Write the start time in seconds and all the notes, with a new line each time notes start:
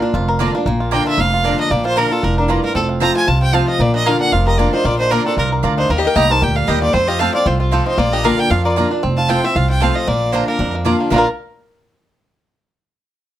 Already playing: A#2 F4 A#4
0.02 D4 F4
0.14 F1 F2 F4
0.28 A#4
0.39 D3 A#3 D4 F4 D5 A#5
0.55 A#3 D4 F4
0.66 A#1 A#2 A#3
0.80 F4
0.91 D3 A#3 D4 F4 D5 G5 A#5
1.07 F4 E5
1.18 F1 F2 A#3 F5
1.33 F4
1.44 D3 A#3 D4 F4 D5 A#5
1.59 A#3 D#5
1.71 A#1 A#2 A#3 D5
1.85 F4 C5
1.96 D3 A#3 D4 F4 A#4 D5 A#5
2.11 D4 F4 A4
2.23 F1 A2 D4 A#4
2.38 D4 A#4
2.48 G2 A#3 F4 D5 A#5
2.64 A#3 A#4
2.75 F1 F2 C4 A4
2.89 F4
3.00 F3 A3 C4 F4 C5 A5 A#5
3.16 F4 G#5
3.28 C2 C3 F4 A5
3.42 C4 G5
3.53 F3 A3 C4 F4 C5 F5 A5
3.68 F4 D#5
3.79 A#1 A#2 A#3 D5
3.94 D4 D#5
4.05 D3 A#3 D4 F4 A#4 D5 F5 A#5
4.21 D4 F#5
4.32 F1 F2 F4 A#4 F5
4.47 G4 A#4 D#5
4.58 D3 A#3 D4 F4 D5 A#5
4.72 D4 D#4 F4 C5
4.85 A#1 A#2 A#3 F4 D5
4.99 D4 D#4 C5
5.10 D3 A#3 D4 F4 A#4 D5 A#5
5.26 C4 D4 F4 A4
5.37 C2 C3 D4 F4 A#4
5.52 A#4
5.63 D2 D3 A#3 F4 D5 A#5
5.77 D4 D#4 C5
5.90 D#2 D#3 A#3 D#4 A#4
5.98 G4 D#5
6.05 D#4 A#4 G5
6.15 C2 G3 A#3 D#4 G4 D#5 G5 A#5
6.30 D#4 G4 A#4 C5 A5
6.41 D2 A#2 G4 A#4 G5
6.55 A#3 A4 F5
6.67 D#2 G3 A#3 D#4 G4 D#5 G5
6.82 F4 G4 D5
6.92 F2 C4 F4 C5
7.08 F4 G4 D#5
7.19 F3 A3 C4 F4 A4 C5 F5 A5
7.33 C4 F4 D5
7.45 C2 C3 C4 F4 C5
7.59 F4, muted resonator guitar played with a steel bar stroke
7.71 F3 A3 C4 F4 A4 C5 A5
7.86 C4 D#4 C5
7.98 A#1 A#2 A#3 F4 D5
8.13 D4 G4 D#5
8.23 D3 A#3 D4 F4 A#4 D5 F5 A#5
8.38 D4 A#4 G5
8.50 F2 F4 A#4 F5
8.65 F4 A#4 D5
8.76 D3 A#3 D4 F4 D5 A#5
8.91 D4 F4
9.03 F1 F2 C4
9.17 F4 A5
9.28 F3 A3 C4 F4 C5 G5 A5
9.44 C4 F4 E5
9.56 C2 C3 F4 F5
9.70 F4 G5
9.80 F3 A3 C4 F4 C5 F5 A5
9.95 F4 D#5
10.07 A#1 A#2 A#3 D5
10.32 D3 A#3 D4 F4 C5 D5 A#5
10.48 A#3 A#4
10.59 F2 D4
10.75 A#3
10.85 D3 A#3 D4 F4 D5 A#5
11.00 A#3
11.10 A#1 A#2 D3 A#3 D4 F4 A#4 D5 A#5
11.16 F4 A#4